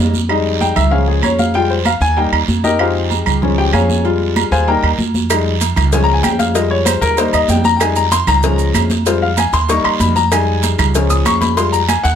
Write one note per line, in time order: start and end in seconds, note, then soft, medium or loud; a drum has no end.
0.00 0.71 F2 medium
0.00 0.11 G3 soft
0.00 0.12 A#3 soft
0.00 0.12 D#4 medium
0.14 high conga medium
0.14 short guiro medium
0.29 0.74 G3 medium
0.29 0.74 G#3 soft
0.29 0.74 D#4 medium
0.29 high conga soft
0.29 low agogo medium
0.29 long guiro medium
0.29 claves medium
0.45 high conga soft
0.61 0.76 G5 medium
0.61 high conga medium
0.61 low agogo medium
0.61 short guiro medium
0.76 1.20 C#2 medium
0.76 0.91 E5 medium
0.76 high conga soft
0.76 low conga medium
0.76 low agogo loud
0.76 short guiro medium
0.76 claves medium
0.91 1.51 F3 soft
0.91 1.51 G#3 soft
0.91 1.51 C#4 medium
0.91 1.07 F5 medium
0.91 high conga soft
0.91 long guiro medium
1.08 1.23 G#4 medium
1.08 high conga soft
1.23 1.96 F2 medium
1.23 1.39 C#5 medium
1.23 high conga medium
1.23 low agogo loud
1.23 short guiro medium
1.23 claves medium
1.39 1.54 F5 medium
1.39 high conga medium
1.39 short guiro medium
1.54 1.75 G3 medium
1.54 1.75 G#3 soft
1.54 1.76 F4 medium
1.54 1.70 G5 loud
1.54 low agogo medium
1.54 long guiro medium
1.70 1.85 C5 medium
1.70 high conga soft
1.85 2.01 F5 medium
1.85 high conga loud
1.85 low agogo loud
1.85 short guiro medium
1.85 claves medium
2.01 2.30 D#2 loud
2.01 2.17 G#5 loud
2.01 high conga soft
2.01 short guiro medium
2.17 2.38 G3 medium
2.17 2.38 A#3 medium
2.17 2.38 D#4 medium
2.17 2.27 G5 medium
2.17 high conga soft
2.17 low agogo medium
2.17 long guiro medium
2.32 2.47 D#2 medium
2.32 high conga soft
2.32 low agogo loud
2.32 claves medium
2.48 3.21 F2 loud
2.48 high conga medium
2.48 short guiro medium
2.64 2.79 D#4 medium
2.64 2.78 G4 medium
2.64 2.79 A#4 medium
2.64 2.79 D#5 medium
2.64 high conga medium
2.64 short guiro medium
2.79 3.39 G#3 soft
2.79 3.40 D#4 medium
2.79 3.09 F4 medium
2.79 3.39 G4 medium
2.79 3.09 G#4 medium
2.79 3.09 C5 medium
2.79 3.09 F5 medium
2.79 high conga soft
2.79 low agogo loud
2.79 long guiro medium
2.79 claves medium
2.96 high conga soft
3.10 high conga medium
3.10 low agogo medium
3.10 short guiro medium
3.26 3.70 C#2 medium
3.26 high conga soft
3.26 low conga medium
3.26 low agogo loud
3.26 short guiro medium
3.26 claves medium
3.42 4.02 F3 medium
3.42 4.02 G#3 soft
3.42 4.02 C#4 medium
3.42 high conga soft
3.42 low conga medium
3.42 long guiro medium
3.58 3.73 G4 medium
3.58 3.73 G5 medium
3.58 high conga soft
3.73 4.46 F2 loud
3.73 4.03 G#4 medium
3.73 4.03 C#5 medium
3.73 4.03 F5 medium
3.73 4.02 G#5 medium
3.73 high conga medium
3.73 low agogo loud
3.73 short guiro medium
3.73 claves medium
3.90 high conga medium
3.90 short guiro medium
4.04 4.64 G3 medium
4.04 4.64 G#3 soft
4.04 4.65 F4 medium
4.04 high conga soft
4.04 low agogo medium
4.04 long guiro medium
4.20 high conga soft
4.36 high conga loud
4.36 low agogo loud
4.36 short guiro medium
4.36 claves medium
4.51 4.81 D#2 loud
4.51 4.67 G#4 medium
4.51 4.67 C5 medium
4.51 4.67 F5 medium
4.51 4.67 G#5 loud
4.51 high conga soft
4.51 short guiro medium
4.67 4.88 G3 medium
4.67 4.88 A#3 soft
4.67 4.89 D#4 medium
4.67 4.97 A#4 medium
4.67 4.97 D#5 medium
4.67 4.97 G5 medium
4.67 4.97 A#5 medium
4.67 high conga soft
4.67 low agogo medium
4.67 long guiro medium
4.83 4.97 D#2 medium
4.83 high conga soft
4.83 low agogo loud
4.83 claves medium
4.99 5.71 F2 loud
4.99 high conga medium
4.99 short guiro medium
5.14 high conga loud
5.14 short guiro medium
5.30 5.51 G3 soft
5.30 5.51 G#3 soft
5.30 5.52 D#4 medium
5.30 cowbell loud
5.30 low agogo loud
5.30 long guiro medium
5.30 claves medium
5.30 maracas medium
5.46 high conga soft
5.61 cowbell medium
5.61 high conga medium
5.61 low agogo medium
5.61 short guiro medium
5.61 maracas medium
5.76 6.20 C#2 loud
5.76 cowbell medium
5.76 high conga soft
5.76 low conga medium
5.76 low agogo loud
5.76 short guiro medium
5.76 claves medium
5.76 maracas soft
5.92 6.52 F3 medium
5.92 6.53 G#3 soft
5.92 6.53 C#4 medium
5.92 6.03 G#5 medium
5.92 cowbell loud
5.92 high conga soft
5.92 low conga medium
5.92 long guiro medium
5.92 maracas medium
6.04 6.13 A#5 loud
6.08 high conga soft
6.13 6.24 G#5 medium
6.23 6.97 F2 loud
6.23 6.39 G5 medium
6.23 cowbell medium
6.23 high conga loud
6.23 low timbale medium
6.23 low agogo loud
6.23 short guiro medium
6.23 claves medium
6.23 maracas medium
6.39 6.55 F5 medium
6.39 cowbell medium
6.39 high conga medium
6.39 short guiro medium
6.39 maracas soft
6.54 7.14 G3 medium
6.54 7.15 G#3 medium
6.54 7.15 F4 medium
6.54 6.70 D#5 medium
6.54 cowbell loud
6.54 low agogo medium
6.54 long guiro medium
6.54 maracas medium
6.71 6.86 C#5 medium
6.71 high conga soft
6.86 7.01 C5 medium
6.86 cowbell medium
6.86 high conga medium
6.86 low agogo medium
6.86 short guiro medium
6.86 claves medium
6.86 maracas medium
7.01 7.31 D#2 loud
7.01 7.17 A#4 loud
7.01 cowbell medium
7.01 high conga soft
7.01 short guiro medium
7.01 maracas soft
7.17 7.62 G3 medium
7.17 7.63 A#3 medium
7.17 7.63 D#4 medium
7.17 7.33 C5 medium
7.17 cowbell loud
7.17 high conga soft
7.17 low agogo medium
7.17 long guiro medium
7.17 maracas medium
7.33 7.48 D#2 medium
7.33 7.49 D#5 medium
7.33 high conga soft
7.33 low agogo loud
7.33 claves medium
7.33 maracas medium
7.48 8.22 F2 loud
7.48 7.65 G5 medium
7.48 cowbell medium
7.48 high conga medium
7.48 low timbale medium
7.48 short guiro medium
7.48 maracas medium
7.64 7.80 A#5 loud
7.64 high conga medium
7.64 short guiro medium
7.64 maracas soft
7.76 7.79 G5 medium
7.76 low agogo loud
7.76 long guiro medium
7.81 8.02 G3 medium
7.81 8.02 G#3 soft
7.81 8.02 D#4 medium
7.81 7.96 G#5 medium
7.81 cowbell loud
7.81 claves medium
7.81 maracas medium
7.96 8.12 A#5 medium
7.96 high conga soft
7.96 maracas medium
8.12 8.27 C6 loud
8.12 cowbell medium
8.12 high conga medium
8.12 low agogo medium
8.12 short guiro medium
8.12 maracas medium
8.27 8.71 C#2 loud
8.27 8.72 A#5 loud
8.27 cowbell medium
8.27 high conga soft
8.27 low conga medium
8.27 low agogo loud
8.27 short guiro medium
8.27 claves medium
8.27 maracas soft
8.43 8.88 F3 medium
8.43 8.88 G#3 medium
8.43 8.89 C#4 medium
8.43 cowbell loud
8.43 high conga soft
8.43 low conga medium
8.43 long guiro medium
8.43 maracas medium
8.59 maracas medium
8.74 9.47 F2 loud
8.74 cowbell medium
8.74 high conga loud
8.74 low agogo loud
8.74 short guiro medium
8.74 claves medium
8.74 maracas medium
8.90 cowbell medium
8.90 high conga medium
8.90 short guiro medium
8.90 maracas soft
9.05 9.27 G3 medium
9.05 9.27 G#3 medium
9.05 9.27 F4 medium
9.05 9.21 C5 medium
9.05 cowbell loud
9.05 low agogo medium
9.05 long guiro medium
9.05 maracas medium
9.22 9.37 F5 medium
9.22 high conga soft
9.37 9.53 G#5 medium
9.37 cowbell medium
9.37 high conga medium
9.37 low agogo medium
9.37 short guiro medium
9.37 claves medium
9.37 maracas medium
9.53 9.82 D#2 medium
9.53 9.69 C6 loud
9.53 cowbell medium
9.53 high conga soft
9.53 short guiro medium
9.53 maracas soft
9.69 10.13 G3 medium
9.69 10.14 A#3 medium
9.69 10.14 D#4 medium
9.69 9.84 C#6 medium
9.69 cowbell loud
9.69 high conga soft
9.69 low agogo medium
9.69 long guiro medium
9.69 maracas medium
9.84 9.99 D#2 medium
9.84 10.00 C6 medium
9.84 high conga soft
9.84 low agogo loud
9.84 claves medium
10.00 10.73 F2 loud
10.00 10.15 B5 medium
10.00 cowbell medium
10.00 high conga loud
10.00 short guiro medium
10.00 maracas medium
10.16 10.31 A#5 loud
10.16 high conga medium
10.16 short guiro medium
10.16 maracas soft
10.31 10.91 G3 soft
10.31 10.92 G#3 soft
10.31 10.92 D#4 medium
10.31 10.61 G#5 medium
10.31 cowbell loud
10.31 low agogo loud
10.31 long guiro medium
10.31 claves medium
10.31 maracas medium
10.48 high conga soft
10.63 cowbell medium
10.63 high conga medium
10.63 low agogo medium
10.63 short guiro medium
10.63 maracas medium
10.79 11.22 C#2 loud
10.79 cowbell medium
10.79 high conga soft
10.79 low conga medium
10.79 low agogo loud
10.79 short guiro medium
10.79 claves medium
10.79 maracas soft
10.94 11.54 F3 medium
10.94 11.54 G#3 soft
10.94 11.55 C#4 medium
10.94 cowbell loud
10.94 long guiro medium
10.94 maracas medium
11.10 11.25 D#6 loud
11.10 high conga soft
11.10 maracas medium
11.25 11.99 F2 medium
11.25 11.41 C#6 medium
11.25 cowbell medium
11.25 high conga medium
11.25 low agogo loud
11.25 short guiro medium
11.25 claves medium
11.25 maracas medium
11.41 11.56 B5 medium
11.41 cowbell medium
11.41 high conga medium
11.41 short guiro medium
11.41 maracas soft
11.57 11.78 G3 medium
11.57 11.78 G#3 medium
11.57 11.78 F4 medium
11.57 11.72 C6 medium
11.57 cowbell loud
11.57 high conga soft
11.57 low agogo medium
11.57 long guiro medium
11.57 maracas medium
11.72 11.88 A#5 medium
11.72 high conga soft
11.72 maracas medium
11.88 12.04 G#5 medium
11.88 cowbell medium
11.88 high conga loud
11.88 low agogo loud
11.88 short guiro medium
11.88 claves medium
11.88 maracas medium
12.04 12.15 D#2 loud
12.04 12.15 F#5 loud
12.04 cowbell medium
12.04 high conga soft
12.04 short guiro medium
12.04 maracas soft